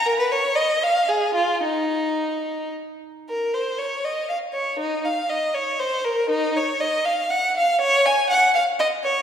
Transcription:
0.05 0.18 A#4 loud
0.19 0.31 B4 medium
0.32 0.56 C#5 medium
0.56 0.81 D#5 medium
0.83 1.08 F5 medium
1.09 1.34 G#4 medium
1.34 1.61 F4 medium
1.63 2.72 D#4 medium
3.30 3.53 A#4 medium
3.54 3.79 C5 medium
3.79 4.04 C#5 medium
4.05 4.29 D#5 medium
4.29 4.37 F5 medium
4.53 4.79 C#5 medium
4.79 5.04 D#4 medium
5.05 5.30 F5 medium
5.29 5.55 D#5 medium
5.54 5.79 C#5 medium
5.79 6.05 C5 medium
6.05 6.31 A#4 medium
6.30 6.56 D#4 medium
6.57 6.82 C#5 medium
6.80 7.06 D#5 medium
7.05 7.31 F5 medium
7.31 7.56 F#5 medium
7.57 7.81 F5 medium
7.81 8.05 C#5 loud
8.06 8.30 G#5 medium
8.30 8.54 F#5 medium
8.55 8.63 F5 medium
8.79 8.87 D#5 medium
9.03 9.22 C#5 medium

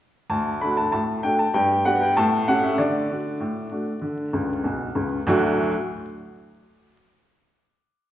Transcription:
0.30 0.56 D2 medium
0.30 0.61 A5 medium
0.61 0.78 A3 soft
0.61 0.79 D4 soft
0.61 0.79 F#4 soft
0.61 0.77 B5 medium
0.77 0.91 A5 medium
0.92 1.18 A2 medium
0.92 1.23 A5 medium
1.23 1.40 A3 soft
1.23 1.41 D4 soft
1.23 1.41 F#4 soft
1.23 1.38 G5 medium
1.39 1.54 A5 medium
1.54 1.80 G2 medium
1.54 1.85 G5 medium
1.85 2.02 B3 soft
1.85 2.02 D4 soft
1.85 2.03 G4 medium
1.85 2.01 F#5 medium
2.02 2.16 G5 medium
2.17 2.43 A2 medium
2.17 2.47 A5 medium
2.48 2.65 A3 medium
2.48 2.65 C#4 medium
2.48 2.65 G4 medium
2.48 2.63 F#5 loud
2.63 2.78 E5 medium
2.78 3.04 D3 medium
2.78 4.96 D5 medium
3.10 3.27 A3 soft
3.10 3.27 D4 soft
3.10 3.27 F#4 soft
3.40 3.66 A2 medium
3.71 3.88 A3 soft
3.71 3.88 D4 soft
3.71 3.89 F#4 soft
4.01 4.28 D3 medium
4.33 4.57 C#2 medium
4.33 4.56 C#3 medium
4.64 4.87 B1 soft
4.64 4.87 B2 medium
4.95 5.19 C#2 medium
4.95 5.18 C#3 medium
5.27 5.61 D2 medium
5.27 5.61 A2 medium
5.27 5.61 F#3 medium
5.27 5.62 A3 medium
5.27 5.62 D4 medium
5.27 5.62 F#4 medium

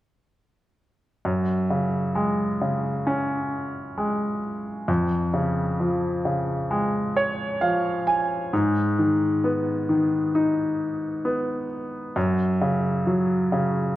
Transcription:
1.25 4.85 F#2 soft
1.70 2.60 C#3 soft
2.16 3.94 G#3 soft
2.61 4.39 C#3 soft
3.06 4.84 C#4 soft
3.98 4.86 G#3 soft
4.88 8.48 F2 medium
5.34 6.24 C#3 soft
5.80 7.57 F3 soft
6.25 8.03 C#3 soft
6.71 8.48 G#3 soft
7.16 7.58 C#5 soft
7.61 8.50 F3 soft
7.61 8.04 F5 soft
8.07 8.49 G#5 medium
8.53 12.12 G#2 soft
8.99 9.87 D#3 soft
9.44 11.21 B3 soft
9.89 11.66 D#3 soft
10.35 12.12 D#4 soft
11.25 12.13 B3 soft
12.16 13.96 F#2 medium
12.62 13.51 C#3 soft
13.07 13.96 F#3 soft
13.52 13.96 C#3 soft

